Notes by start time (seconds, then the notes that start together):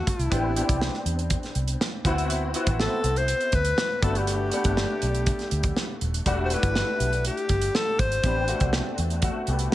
Already playing: A3 D4 F#4 A4
0.07 E4, kick, closed hi-hat
0.19 C2, closed hi-hat
0.30 A1 B3 C4 D4 G4, kick, closed hi-hat
0.56 B3 C4 D4 G4, closed hi-hat
0.69 C2, kick, closed hi-hat
0.81 snare
0.94 snare
1.06 E2, closed hi-hat
1.19 closed hi-hat
1.30 kick, closed hi-hat
1.43 snare, closed hi-hat
1.55 C2, closed hi-hat
1.68 closed hi-hat
1.81 snare
2.05 D2 B3 C4 E4 F#4, kick, closed hi-hat
2.18 closed hi-hat
2.30 closed hi-hat
2.54 B3 C4 E4 F#4, closed hi-hat
2.67 A1, kick, closed hi-hat
2.80 A4, snare
3.04 C2, closed hi-hat
3.16 C5, closed hi-hat
3.28 closed hi-hat
3.40 closed hi-hat
3.52 D2 B4, kick, closed hi-hat
3.65 closed hi-hat
3.78 snare
4.02 G1 A3 B3 D4 F#4 A4, kick, closed hi-hat
4.15 G4, closed hi-hat
4.27 closed hi-hat
4.51 A3 B3 D4 F#5, closed hi-hat
4.64 G1, kick, closed hi-hat
4.77 snare
5.02 B1, closed hi-hat
5.15 closed hi-hat
5.26 kick, closed hi-hat
5.39 snare, closed hi-hat
5.51 D2, closed hi-hat
5.63 kick, closed hi-hat
5.77 snare
6.01 D#1, closed hi-hat
6.14 closed hi-hat
6.26 E1 G3 A3 D4 F#4, kick, closed hi-hat
6.45 C5
6.50 G3 A3 D4 E4 B4, closed hi-hat
6.63 G1, kick, closed hi-hat
6.75 snare
7.00 B1, closed hi-hat
7.13 closed hi-hat
7.25 G4, closed hi-hat
7.37 closed hi-hat
7.49 G1, kick, closed hi-hat
7.61 closed hi-hat
7.75 A4, snare
7.99 G#1 C5, kick, closed hi-hat
8.12 closed hi-hat
8.23 A1 B3 C4 D4 G4, kick, closed hi-hat
8.48 A3 C4 D4 F#4, closed hi-hat
8.60 C2, kick, closed hi-hat
8.73 snare
8.98 E2, closed hi-hat
9.10 closed hi-hat
9.22 A3 F#4, kick, closed hi-hat
9.47 C2 B3 G4, closed hi-hat
9.59 closed hi-hat